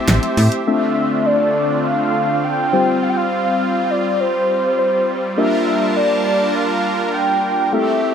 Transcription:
Already playing: A3 C4 E4 G4 C5 E5 A5
0.08 A1 E5, snare, closed hi-hat
0.23 closed hi-hat
0.37 A2, open hi-hat
0.52 closed hi-hat
0.67 D3 A3 C4 D4 F4 A4 E5
1.26 D5
1.85 F5
2.44 G5
2.73 G3 C4 F4 G4 C5
3.03 F5
3.09 G5
3.16 F5
3.90 D5
4.20 C5
4.79 C5
5.37 A#3 D4 F4 G4 A#4 E5 A5
5.96 D5
6.55 F5
7.14 G5
7.72 A3 C4 E4 G4 A4 E5

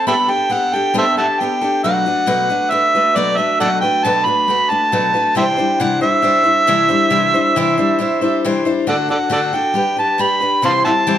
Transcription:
0.07 G3 B3 D4 G4 A4 E5 G5 B5
0.28 D4 G4 A4 G5
0.50 B3 D4 G4 A4 F#5
0.73 D4 G4 A4 G5
0.94 G3 B3 D4 G4 A4
0.98 A4 C5 E5
1.17 D4 G4 A4 E5 F#5 A5
1.40 B3 D4 G4 A4 G5
1.61 D4 G4 A4
1.84 B2 F#3 A3 D4 F#4 B4 F#5
2.06 A3 D4 F#4 B4
2.26 B2 F#3 A3 D4 F#4 B4
2.50 A3 D4 F#4 B4
2.71 A3 D4 F#4 B4 E5
2.95 A3 D4 F#4 B4
3.16 B2 F#3 A3 D4 F#4 B4 D5
3.38 A3 D4 F#4 B4 E5
3.60 B2 F#3 A3 D4 F#4 A4 B4 D5 F#5
3.81 A3 D4 F#4 B4 G5
4.04 B2 F#3 A3 D4 F#4 B4 A5
4.25 A3 D4 F#4 B4 B5
4.48 A3 D4 F#4 B4
4.70 A3 D4 F#4 B4 A5
4.92 B2 F#3 A3 D4 F#4 B4
5.14 A3 D4 F#4 B4
5.35 C3 E3 G3 D4 E4 C5 E5 G5
5.57 G3 D4 E4 C5
5.80 C3 E3 G3 D4 E4 C5 F#5
6.01 G3 D4 E4 C5 E5
6.22 G3 D4 E4 C5
6.44 G3 D4 E4 C5
6.67 C3 E3 G3 D4 E4 C5
6.89 G3 D4 E4 C5
7.10 C3 E3 G3 D4 E4 C5
7.34 G3 D4 E4 C5
7.56 C3 E3 G3 D4 E4 C5
7.78 G3 D4 E4 C5
7.99 G3 D4 E4 C5
8.21 G3 D4 E4 C5
8.45 C3 E3 G3 D4 E4 C5
8.65 G3 D4 E4 C5
8.87 D3 A3 D4 F#4 A4 D5 F#5
9.09 D4 F#4 A4 D5 F#5
9.30 D3 A3 D4 F#4 A4 D5 F#5
9.53 D4 F#4 A4 G5
9.74 G3 D4 G4 B4
9.97 D4 G4 B4 A5
10.18 G3 D4 G4 B4 B5
10.41 D4 G4 B4
10.62 C3 E3 G3 C4 E4 C5 F5 A5 C6
10.85 G3 C4 E4 C5 E5 F#5 A5
11.07 C3 E3 G3 C4 E4 C5

